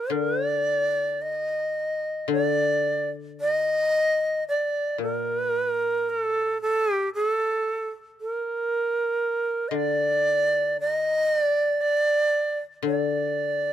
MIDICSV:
0, 0, Header, 1, 3, 480
1, 0, Start_track
1, 0, Tempo, 1086957
1, 51, Time_signature, 4, 2, 24, 8
1, 2450, Tempo, 1045296
1, 6207, End_track
2, 0, Start_track
2, 0, Title_t, "Shakuhachi"
2, 0, Program_c, 0, 77
2, 0, Note_on_c, 0, 70, 71
2, 51, Note_off_c, 0, 70, 0
2, 51, Note_on_c, 0, 70, 99
2, 210, Note_off_c, 0, 70, 0
2, 210, Note_on_c, 0, 74, 99
2, 536, Note_on_c, 0, 75, 89
2, 543, Note_off_c, 0, 74, 0
2, 1020, Note_off_c, 0, 75, 0
2, 1026, Note_on_c, 0, 74, 107
2, 1366, Note_off_c, 0, 74, 0
2, 1505, Note_on_c, 0, 75, 115
2, 1960, Note_off_c, 0, 75, 0
2, 1981, Note_on_c, 0, 74, 82
2, 2199, Note_off_c, 0, 74, 0
2, 2219, Note_on_c, 0, 70, 90
2, 2702, Note_on_c, 0, 69, 95
2, 2709, Note_off_c, 0, 70, 0
2, 2937, Note_off_c, 0, 69, 0
2, 2940, Note_on_c, 0, 69, 112
2, 3082, Note_off_c, 0, 69, 0
2, 3082, Note_on_c, 0, 67, 112
2, 3160, Note_off_c, 0, 67, 0
2, 3185, Note_on_c, 0, 68, 108
2, 3235, Note_off_c, 0, 68, 0
2, 3235, Note_on_c, 0, 69, 108
2, 3526, Note_off_c, 0, 69, 0
2, 3672, Note_on_c, 0, 70, 92
2, 4350, Note_on_c, 0, 75, 70
2, 4357, Note_off_c, 0, 70, 0
2, 4383, Note_on_c, 0, 74, 104
2, 4390, Note_off_c, 0, 75, 0
2, 4851, Note_off_c, 0, 74, 0
2, 4862, Note_on_c, 0, 75, 113
2, 5124, Note_off_c, 0, 75, 0
2, 5124, Note_on_c, 0, 74, 113
2, 5326, Note_off_c, 0, 74, 0
2, 5326, Note_on_c, 0, 74, 107
2, 5685, Note_off_c, 0, 74, 0
2, 5810, Note_on_c, 0, 74, 88
2, 6207, Note_off_c, 0, 74, 0
2, 6207, End_track
3, 0, Start_track
3, 0, Title_t, "Koto"
3, 0, Program_c, 1, 107
3, 43, Note_on_c, 1, 50, 57
3, 1001, Note_off_c, 1, 50, 0
3, 1006, Note_on_c, 1, 50, 67
3, 2201, Note_on_c, 1, 46, 58
3, 2443, Note_off_c, 1, 50, 0
3, 3652, Note_off_c, 1, 46, 0
3, 4361, Note_on_c, 1, 50, 64
3, 5786, Note_off_c, 1, 50, 0
3, 5792, Note_on_c, 1, 50, 64
3, 6207, Note_off_c, 1, 50, 0
3, 6207, End_track
0, 0, End_of_file